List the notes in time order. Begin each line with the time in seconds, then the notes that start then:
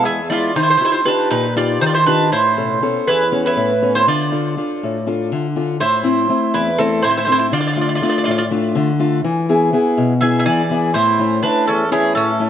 Already playing: G#3 B3 E4
0.05 E2 G#4 E5
0.30 G#3 B3 E4 F4 D5
0.56 D#3 D#4 C5
0.62 E4 C5
0.70 E4 C5
0.77 D#4 E4 F4 G4 C5
0.85 E4 C5
0.92 E4 C5
1.05 D4 D#4 F4 G4 B4
1.30 A#2 D#4 B4
1.56 D#4 F4 G4 D5
1.81 D#3 D#4 C5
1.86 F4 D5
1.94 E4 C5
2.06 D4 D#4 F4 G4 B4
2.32 A2 E4 C5
2.56 B2 C#4 A4
2.82 B3 C#4 A4
3.07 E2 E4 B4
3.32 B3 C#4 A4
3.46 E4 B4
3.57 A2
3.82 B3 C#4 A4
3.95 E4 C5
4.07 D3 F4 D5
4.32 D4 F4 A4
4.57 D4 F4 A4
4.83 A2
5.07 D4 F4 A4
5.32 D3
5.56 D4 F4 A4
5.80 A2 E4 C5
6.03 A3 C4 E4
6.29 A3 C4 E4
6.54 E2 E4 B4
6.78 A3 C4 E4 A4
7.02 A2 E4 C5
7.09 E4 C5
7.17 E4 C5
7.25 A3 C4 E4 C5
7.32 E4 C5
7.39 E4 C5
7.52 D3 F4 D5
7.60 F4 D5
7.67 F4 D5
7.73 A3 D4 F4 D5
7.81 F4 D5
7.89 F4 D5
7.95 F4 D5
8.02 A3 D4 F4 D5
8.10 F4 D5
8.18 F4 D5
8.24 A2 F4 D5
8.31 F4 D5
8.38 F4 D5
8.51 A3 D4 F4
8.75 D3
8.99 A3 D4 F4
9.24 E3
9.49 B3 E4 G#4
9.73 B3 E4 G#4
9.97 B2
10.21 B3 E4 G#4 E5
10.39 G#4 E5
10.46 E3 G#4 D5
10.70 B3 E4 G#4
10.94 A2 E4 C5
11.19 A3 C#4 E4
11.43 A3 C#4 D4 E4 B4
11.67 E2 C#4 A4
11.91 A3 B3 C#4 E4 G#4
12.15 A2 C#4 A4
12.40 A3 C#4 E4